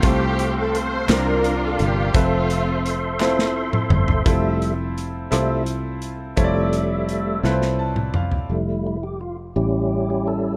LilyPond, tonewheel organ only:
<<
  \new Staff \with { instrumentName = "Tonewheel organ" } { \time 6/8 \key f \major \tempo 4. = 57 << { c'''2.~ | c'''2. | r2. | r2. |
r8 e'16 g'16 f'8 g'8. g'16 a'8 | } \\ { <a' c''>4. <bes' d''>4. | <a' e''>2. | r2. | r2. |
r2. | } >> }
  \new Staff \with { instrumentName = "Tonewheel organ" } { \time 6/8 \key f \major f''2. | c''2. | <g a e''>8 r4 <g a e''>8 r4 | <g a e''>4. r4. |
<g a e'>8 r4 <g cis' e'>4. | }
>>